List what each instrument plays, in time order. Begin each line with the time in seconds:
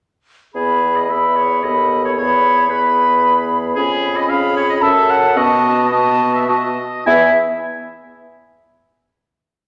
0.54 bassoon E2, french horn B3, clarinet G#4, oboe G#4, flute B5
0.96 oboe D#5
1.09 french horn B3, clarinet G#4, oboe E5, flute B5
1.36 oboe C#5
1.63 bassoon D#2, french horn B3, clarinet A4, oboe D#5, flute B5
2.05 oboe C#5
2.17 bassoon E2, french horn B3, clarinet G#4, oboe C#5, flute B5
2.69 french horn B3, clarinet G#4, oboe B4, flute B5
3.75 bassoon F2, french horn C#4, clarinet G#4, oboe G#4, flute B5
4.16 oboe D#5
4.29 french horn C#4, clarinet G#4, oboe F5, flute B5
4.56 oboe C#5
4.69 oboe D#5
4.82 bassoon F#2, french horn C#4, clarinet A4, oboe E5, flute A5
5.10 oboe F#5
5.36 bassoon B2, french horn B3, clarinet F#4, oboe D#5, flute A5
5.92 french horn B3, clarinet F#4, oboe D#5, flute A5
6.35 oboe E5
6.48 french horn B3, clarinet F#4, oboe D#5, flute A5
7.06 bassoon E2, french horn B3, clarinet E4, flute E5, oboe G#5